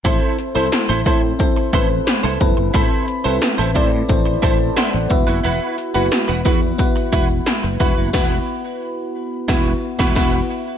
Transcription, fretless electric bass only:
X:1
M:4/4
L:1/16
Q:1/4=89
K:Ador
V:1 name="Fretless electric bass" clef=bass
A,,, z2 C,, z A,,, A,,2 z2 A,,,2 z C,, F,,, G,,, | A,,, z2 C,, z A,,, A,,2 A,,,2 A,,,2 z A,,, E,,, F,,, | E,,, z2 F,,, z E,,, E,,2 z2 E,,,2 z F,,, E,,, F,,, | E,,,2 z6 E,,,2 z E,,, E,,,2 z2 |]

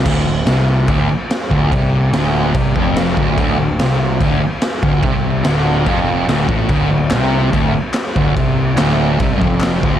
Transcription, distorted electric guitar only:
X:1
M:4/4
L:1/8
Q:1/4=144
K:Clyd
V:1 name="Distorted electric guitar" clef=bass
D,, D,, C,2 D,, z2 D,, | C,2 D,,2 C, =F,,2 D,, | D,, D,, C,2 D,, z2 D,, | C,2 D,,2 =F,,2 D,, A,, |
D,, D,, C,2 D,, z2 D,, | C,2 D,,2 C, =F,,2 D,, |]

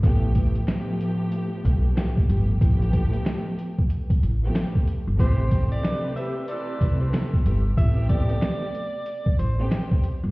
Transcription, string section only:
X:1
M:4/4
L:1/16
Q:"Swing 16ths" 1/4=93
K:Am
V:1 name="String section"
[A,,F,A,B,G]4 [A,,F,A,B,G]6- [A,,F,A,B,G] z [A,,F,A,B,G]2 [A,,F,A,B,G]2 | [A,,F,A,B,G]8- [A,,F,A,B,G] z2 [A,,F,A,B,G]3 z2 | [C,A,CG]4 [C,A,GB]6- [C,A,GB] z [C,A,B,G]2 [C,A,B,G]2 | [C,A,B,G]8- [C,A,B,G] z2 [C,A,B,G]3 z2 |]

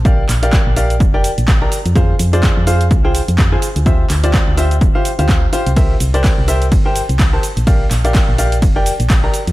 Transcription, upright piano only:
X:1
M:4/4
L:1/16
Q:"Swing 16ths" 1/4=126
K:Bblyd
V:1 name="Upright piano"
[GBdf] z2 [GBdf]3 [GBdf] z2 [GBdg] z3 [GBdb] z2 | [F_Acf] z2 [FAcd]3 [FAcf] z2 [FAcg] z3 [FAc_a] z2 | [FGce] z2 [FGcd]3 [FGce] z2 [FGcf] z [FGcf]2 z [FGcf] z | [GBce] z2 [GBcd]3 [GBce] z2 [GBcg] z3 [GBca] z2 |
[GBdf] z2 [GBdf]3 [GBdf] z2 [GBdg] z3 [GBdb] z2 |]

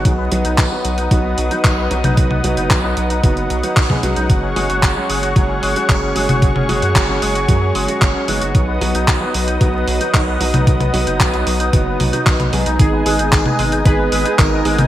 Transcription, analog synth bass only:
X:1
M:4/4
L:1/16
Q:1/4=113
K:Blyd
V:1 name="Analog synth bass" clef=bass
B,,,2 B,,, B,,, B,,, z B,,,2 B,,,2 B,,, z B,,,2 B,,, B,,, | B,,,2 B,,, F,,, B,,,2 B,,,2 F,,,2 B,,, z B,,,2 B,,, B,,, | F,,,2 F,,, F,,, F,,, z F,,,2 F,,,2 F,,, z F,,,2 F,,, F,,, | F,,,2 F,,, F,, F,,,2 F,,,2 F,,2 F,,, z F,,, z F,,, F,,, |
B,,,2 B,,, B,,, B,,, z B,,,2 B,,,2 B,,, z B,,,2 B,,, B,,, | B,,,2 B,,, F,,, B,,,2 B,,,2 F,,,2 B,,, z B,,,2 B,,, B,,, | G,,,2 G,,, G,,, G,,, z G,,,2 G,,,2 G,,, z G,,,2 G,,, G,,, |]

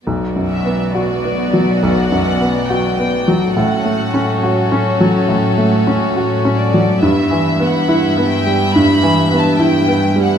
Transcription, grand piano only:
X:1
M:4/4
L:1/8
Q:1/4=70
K:Bm
V:1 name="Grand piano"
(3B,,, F,, B, (3F B, F, (3B,,, F,, B, (3F B, F, | (3A,, A, C (3F C F, (3A,, A, C (3F C F, | (3G,, E, B, (3E B, G, (3G,, E, B, (3E B, G, |]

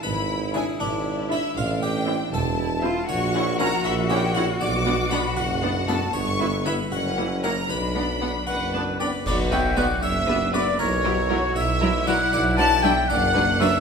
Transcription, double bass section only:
X:1
M:6/8
L:1/8
Q:3/8=78
K:Am
V:1 name="Double bass section" clef=bass
^G,,,3 G,,,3 | A,,,3 E,,,3 | [K:Bm] ^A,,,3 A,,,3 | B,,,3 F,,,3 |
G,,,3 F,,,3 | B,,,3 F,,,3 | B,,,3 F,,,3 | B,,,3 B,,,3 |
B,,,3 F,,,3 |]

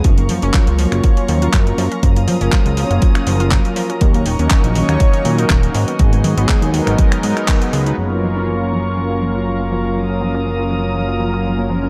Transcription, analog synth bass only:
X:1
M:4/4
L:1/16
Q:"Swing 16ths" 1/4=121
K:F#
V:1 name="Analog synth bass" clef=bass
F,,,2 F,, F,,, z C,,2 F,,, z2 D,,2 F,,2 F,, z | F,,,2 F,, F,,, z C,,2 F,,, z2 F,,,3 z3 | D,,2 D,,, D,, z A,,,2 D,, z2 A,,2 D,,,2 G,, z | G,,,2 G,, G,,, z D,,2 G,,, z2 G,, z3 C,,2 |
F,,,16- | F,,,16 |]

